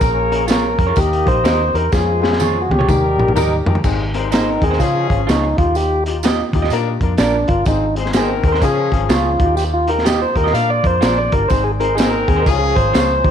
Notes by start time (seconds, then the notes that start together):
Already playing: A#4
0.01 A#1 A#2 A#3 C#4 G#4 A#4 C#5, kick, closed hi-hat, tambourine
0.31 C#4 G#4 A#4, closed hi-hat
0.48 C#4 F4 G#4 A#4 C#5, snare, closed hi-hat, tambourine
0.78 F2 C#4 G#4 A#4, kick, closed hi-hat
0.87 F4 G#4 C#5
0.96 D#2 D#3 A#3 D#4 G4 A#4 D#5, kick, closed hi-hat, tambourine
1.13 closed hi-hat
1.25 A#1 D#4 G4 A#4 C5, kick, closed hi-hat
1.44 D#2 D#4 G4 A#4 C5 D#5, snare, closed hi-hat, tambourine
1.74 E2 D#4 G4 A#4, closed hi-hat
1.92 F2 G#3 C#4 F4 G#4 C5, kick, snare, tambourine
2.22 C#4 F4 G#4, snare
2.33 snare
2.40 C#4 F4 G#4 C#5, high tom, tambourine
2.62 F#4
2.70 C#2 C#4 F4 G4 G#4, high tom
2.79 F4 G#4 C#5, mid tom
2.88 D#2 D#3 G3 D#4 G4 A#4, kick, mid tom, tambourine
3.17 A#1 D#4 G4 A#4, mid tom
3.28 mid tom
3.36 D#2 D#4 G4 A#4 D#5, mid tom, tambourine
3.66 F2 D#4 G4 A#4, floor tom
3.75 floor tom
3.84 G#1 G#2 C4 D#4 G#4, kick, crash, tambourine
4.14 G#3 C4 D#4 A#4 C5, closed hi-hat
4.32 D#3 C4 D#4 G#4 A#4 C5, snare, closed hi-hat, tambourine
4.62 D#2 C4 D#4 G#4, kick, closed hi-hat
4.71 D#4 G#4 C5, snare
4.79 C#3 F3 C#4 F4 G#4, kick, closed hi-hat, tambourine
5.10 G#1 C#4 F4 G#4, kick, closed hi-hat
5.27 C#2 C#4 D#4 F4 G#4 C#5, snare, closed hi-hat, tambourine
5.58 D#2 D#3 D#4 F4 G4, kick, closed hi-hat
5.75 G4, closed hi-hat, tambourine
6.06 D#4 F4 G4, closed hi-hat
6.23 D#4 F4 G4 D#5, snare, closed hi-hat, tambourine
6.53 D#2 D#4 F4 G4, kick, closed hi-hat
6.62 F4 G4 D#5, snare
6.70 A#2 D4 F4 A#4, closed hi-hat, tambourine
7.01 F2 D4 F4 A#4, kick, closed hi-hat
7.18 A#1 D4 F4 A#4 D5, snare, closed hi-hat, tambourine
7.48 G1 D4 F4 A#4, kick, closed hi-hat
7.65 G#1 G#2 C4 D#4 G#4, kick, closed hi-hat, tambourine
7.96 G#3 C4 D#4 G#4 C5, closed hi-hat
8.06 snare
8.13 D#3 C4 D#4 G#4 A#4 C5, snare, closed hi-hat, tambourine
8.44 D#2 C4 D#4 G#4, kick, closed hi-hat
8.48 A#4
8.52 D#4 G#4 C5, snare
8.61 C#3 F3 C#4 F4 G#4, kick, closed hi-hat, tambourine
8.91 G#1 C#4 F4 G#4, kick, closed hi-hat
9.09 C#2 C#4 F4 G#4 C#5, snare, closed hi-hat, tambourine
9.39 D#2 D#3 D#4 F4 F#4, kick, closed hi-hat
9.45 G4
9.57 G4, closed hi-hat, tambourine
9.74 F4
9.87 D#4 F4 G4 A#4, closed hi-hat
9.98 snare
10.04 D#4 F4 G4 D#5, snare, closed hi-hat, tambourine
10.22 C5
10.35 D#2 D#4 F4 G4 A#4, kick, closed hi-hat
10.44 F4 G4 D#5, snare
10.53 A#2 D4 F4 A#4 F5, closed hi-hat, tambourine
10.70 D5
10.83 F2 D4 F4 A#4 C5, kick, closed hi-hat
11.01 A#1 D4 F4 G#4 A#4 D5, snare, closed hi-hat, tambourine
11.18 D5
11.32 G1 D4 F4 G4 A#4, kick, closed hi-hat
11.48 G#1 G#2 C4 D#4 G#4 C5, kick, closed hi-hat, tambourine
11.64 G#4
11.80 G#3 C4 D#4 G#4 A#4 C5, closed hi-hat
11.95 D#3 C4 D#4 G#4 A#4 C5, closed hi-hat, tambourine
12.00 snare
12.10 A#4
12.28 D#2 C4 D#4 G#4, kick, closed hi-hat
12.36 D#4 G#4 C5
12.42 A#4
12.46 C#2 C#3 F3 C#4 F4 G#4, kick, closed hi-hat, tambourine
12.58 G#4
12.76 G#1 C#4 F4 G#4 C5, kick, closed hi-hat
12.93 C#2 C#4 F4 G#4 C#5, snare, closed hi-hat, tambourine
13.24 D#2 D#3 D#4 F4 G4, kick, open hi-hat